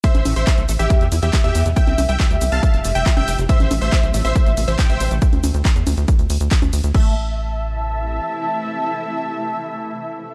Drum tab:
CC |----------------|----------------|----------------|----------------|
RD |x-x-x-x-x-x-x-x-|x-x-x-x-x-x-x-x-|x-x-x-x-x-x-x-x-|x-x-x-x-x-x-x-x-|
HH |xxoxxxoxxxoxxxox|xxoxxxoxxxoxxxox|xxoxxxoxxxoxxxox|xxoxxxoxxxoxxxox|
SH |xxxxxxxxxxxxxxxx|xxxxxxxxxxxxxxxx|xxxxxxxxxxxxxxxx|xxxxxxxxxxxxxxxx|
CP |----x-------x---|----x-------x---|----x-------x---|----x-------x---|
CG |-oo-------------|-oo----------o--|-oo-------------|-oo---o------o--|
BD |o---o---o---o---|o---o---o---o---|o---o---o---o---|o---o---o---o---|

CC |x---------------|----------------|
RD |----------------|----------------|
HH |----------------|----------------|
SH |----------------|----------------|
CP |----------------|----------------|
CG |----------------|----------------|
BD |o---------------|----------------|